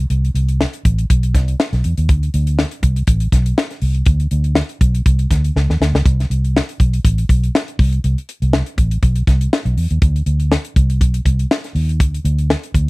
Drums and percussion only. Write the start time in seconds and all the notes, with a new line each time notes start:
0.10 closed hi-hat
0.25 closed hi-hat
0.35 closed hi-hat
0.49 closed hi-hat
0.61 snare
0.73 closed hi-hat
0.85 kick, closed hi-hat
0.99 closed hi-hat
1.10 kick, closed hi-hat
1.23 closed hi-hat
1.35 kick, snare, closed hi-hat
1.48 closed hi-hat
1.60 snare
1.73 snare, closed hi-hat
1.84 closed hi-hat
1.97 closed hi-hat
2.09 kick, closed hi-hat
2.23 closed hi-hat
2.34 closed hi-hat
2.47 closed hi-hat
2.59 snare
2.71 closed hi-hat
2.83 kick, closed hi-hat
2.96 closed hi-hat
3.07 kick, closed hi-hat
3.20 closed hi-hat
3.32 kick, snare, closed hi-hat
3.46 closed hi-hat
3.58 snare
3.70 snare, closed hi-hat
3.82 open hi-hat
3.95 closed hi-hat
4.06 kick, closed hi-hat
4.20 closed hi-hat
4.31 closed hi-hat
4.44 closed hi-hat
4.55 snare
4.69 closed hi-hat
4.81 kick, closed hi-hat
4.95 closed hi-hat
5.06 kick, closed hi-hat
5.19 closed hi-hat
5.31 kick, snare, closed hi-hat
5.44 closed hi-hat
5.56 snare
5.70 snare
5.82 snare
5.95 snare
6.06 kick, closed hi-hat
6.20 snare, closed hi-hat
6.31 closed hi-hat
6.45 closed hi-hat
6.57 snare
6.69 closed hi-hat
6.80 kick, closed hi-hat
6.93 closed hi-hat
7.05 kick, closed hi-hat
7.18 closed hi-hat
7.29 kick, closed hi-hat
7.44 closed hi-hat
7.55 snare
7.68 closed hi-hat
7.79 kick, open hi-hat
7.92 closed hi-hat
8.04 closed hi-hat
8.18 closed hi-hat
8.29 closed hi-hat
8.42 closed hi-hat
8.53 snare
8.66 closed hi-hat
8.78 kick, closed hi-hat
8.91 closed hi-hat
9.03 kick, closed hi-hat
9.16 closed hi-hat
9.27 kick, snare, closed hi-hat
9.41 closed hi-hat
9.53 snare
9.66 closed hi-hat
9.78 open hi-hat
9.90 closed hi-hat
10.02 kick, closed hi-hat
10.16 closed hi-hat
10.26 closed hi-hat
10.40 closed hi-hat
10.52 snare
10.65 closed hi-hat
10.76 kick, closed hi-hat
10.90 closed hi-hat
11.01 kick, closed hi-hat
11.14 closed hi-hat
11.26 kick, closed hi-hat
11.39 closed hi-hat
11.51 snare
11.64 snare, closed hi-hat
11.76 open hi-hat
11.89 closed hi-hat
12.00 kick, closed hi-hat
12.14 closed hi-hat
12.25 closed hi-hat
12.38 closed hi-hat
12.50 snare
12.63 closed hi-hat
12.74 kick, closed hi-hat